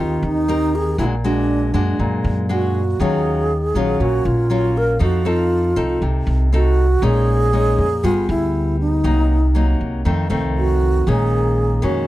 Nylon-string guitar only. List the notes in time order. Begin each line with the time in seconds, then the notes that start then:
Already playing: C4 G4 A#4
0.00 D#3
0.48 C4 G4 A#4
0.98 A#2 G#3 D4 F#4
1.24 G#3 D4 F#4
1.74 G#3 D4 F#4
2.00 A#2
2.49 G#3 D4 F#4
3.00 D#3 F#3 C#4 F4
3.75 F#3 C#4 F4
4.01 A#2
4.50 F#3 C#4 F4
4.99 F3 C4 D#4 A4
5.25 C4 D#4 A4
5.76 C4 D#4 A4
6.02 C3
6.52 C4 D#4 A4
7.02 A#2 G#3 C#4 D#4
7.53 G#3 C#4 D#4
8.03 G3 B3 G#4
9.04 C3 F#3 A#3 D#4
9.55 F#3 A#3 D#4
10.05 F2 D#3 A3 C4
10.30 D#3 A3 C4
11.07 A#2 D#3 G#3 C#4
11.82 D#3 G#3 C#4